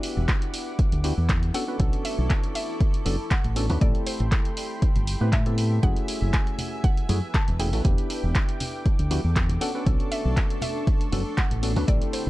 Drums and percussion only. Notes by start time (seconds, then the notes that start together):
0.03 open hi-hat
0.28 kick, clap, closed hi-hat
0.42 closed hi-hat
0.54 open hi-hat
0.79 kick, closed hi-hat
0.92 closed hi-hat
1.04 open hi-hat
1.29 kick, clap, closed hi-hat
1.43 closed hi-hat
1.54 open hi-hat
1.80 kick, closed hi-hat
1.93 closed hi-hat
2.05 open hi-hat
2.30 kick, clap, closed hi-hat
2.44 closed hi-hat
2.55 open hi-hat
2.81 kick, closed hi-hat
2.94 closed hi-hat
3.06 open hi-hat
3.31 kick, clap, closed hi-hat
3.44 closed hi-hat
3.56 open hi-hat
3.70 open hi-hat
3.81 kick, closed hi-hat
3.95 closed hi-hat
4.07 open hi-hat
4.20 closed hi-hat
4.32 kick, clap, closed hi-hat
4.45 closed hi-hat
4.57 open hi-hat
4.82 kick, closed hi-hat
4.96 closed hi-hat
5.07 open hi-hat
5.33 kick, clap, closed hi-hat
5.46 closed hi-hat
5.58 open hi-hat
5.83 kick, closed hi-hat
5.97 closed hi-hat
6.08 open hi-hat
6.34 kick, clap, closed hi-hat
6.47 closed hi-hat
6.58 open hi-hat, low conga
6.84 kick, closed hi-hat
6.97 closed hi-hat
7.09 open hi-hat, high conga
7.34 kick, clap, closed hi-hat
7.48 closed hi-hat
7.60 open hi-hat
7.73 open hi-hat
7.85 kick, closed hi-hat
7.98 closed hi-hat
8.10 open hi-hat
8.35 kick, clap, closed hi-hat
8.49 closed hi-hat
8.60 open hi-hat, low conga
8.86 kick, closed hi-hat
8.99 closed hi-hat
9.11 open hi-hat, high conga
9.36 kick, clap, closed hi-hat
9.49 closed hi-hat, low conga
9.61 open hi-hat
9.86 kick, closed hi-hat
10.00 closed hi-hat
10.12 open hi-hat
10.37 kick, clap, closed hi-hat
10.50 closed hi-hat
10.62 open hi-hat, low conga
10.87 kick, closed hi-hat
11.01 closed hi-hat
11.12 open hi-hat, high conga
11.38 kick, clap, closed hi-hat
11.51 closed hi-hat
11.63 open hi-hat
11.76 open hi-hat
11.88 kick, closed hi-hat
12.02 closed hi-hat
12.13 open hi-hat